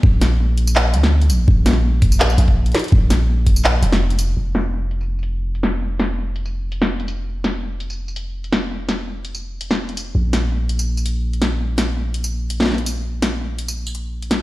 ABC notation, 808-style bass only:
X:1
M:4/4
L:1/8
Q:"Swing 16ths" 1/4=166
K:Bbmix
V:1 name="808-style bass" clef=bass
B,,,4- B,,, D,,2 B,,, | B,,,4- B,,, B,,,2 z | B,,,4- B,,, F,,,3 | F,,,8- |
F,,,8- | F,,,8- | F,,,8 | B,,,8- |
B,,,8- | B,,,8 |]